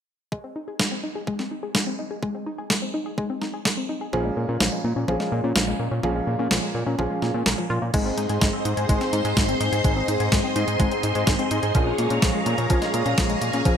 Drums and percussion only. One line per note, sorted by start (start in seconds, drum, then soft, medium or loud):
0.32 kick loud
0.80 kick loud
0.80 snare loud
1.27 kick loud
1.39 snare soft
1.75 kick loud
1.75 snare loud
2.23 kick loud
2.70 kick loud
2.70 snare loud
3.18 kick loud
3.42 snare soft
3.65 kick loud
3.65 snare loud
4.13 kick loud
4.60 kick loud
4.60 snare loud
5.08 kick loud
5.20 snare soft
5.56 kick loud
5.56 snare loud
6.03 kick loud
6.51 kick loud
6.51 snare loud
6.99 kick loud
7.22 snare soft
7.46 kick loud
7.46 snare loud
7.58 kick medium
7.94 kick loud
7.94 closed hi-hat medium
7.94 crash medium
8.18 closed hi-hat medium
8.29 closed hi-hat medium
8.41 kick loud
8.41 snare loud
8.41 closed hi-hat medium
8.65 closed hi-hat medium
8.77 closed hi-hat medium
8.89 kick loud
8.89 closed hi-hat medium
9.01 snare soft
9.01 closed hi-hat soft
9.13 closed hi-hat medium
9.25 closed hi-hat medium
9.37 kick loud
9.37 snare loud
9.37 closed hi-hat medium
9.49 closed hi-hat soft
9.61 closed hi-hat medium
9.73 closed hi-hat medium
9.84 kick loud
9.84 closed hi-hat medium
10.08 closed hi-hat medium
10.20 closed hi-hat medium
10.32 kick loud
10.32 snare loud
10.32 closed hi-hat medium
10.56 closed hi-hat medium
10.68 closed hi-hat medium
10.80 kick loud
10.80 closed hi-hat medium
10.91 closed hi-hat soft
11.03 closed hi-hat medium
11.15 closed hi-hat soft
11.27 kick loud
11.27 snare loud
11.27 closed hi-hat medium
11.39 closed hi-hat soft
11.51 closed hi-hat medium
11.63 closed hi-hat medium
11.75 kick loud
11.75 closed hi-hat medium
11.98 closed hi-hat medium
12.10 closed hi-hat medium
12.22 kick loud
12.22 snare loud
12.22 closed hi-hat medium
12.46 closed hi-hat medium
12.58 closed hi-hat medium
12.70 kick loud
12.70 closed hi-hat medium
12.82 snare soft
12.82 closed hi-hat soft
12.94 closed hi-hat medium
13.06 closed hi-hat soft
13.18 kick loud
13.18 snare loud
13.18 closed hi-hat medium
13.30 closed hi-hat soft
13.42 closed hi-hat medium
13.53 closed hi-hat soft
13.65 kick loud
13.65 closed hi-hat medium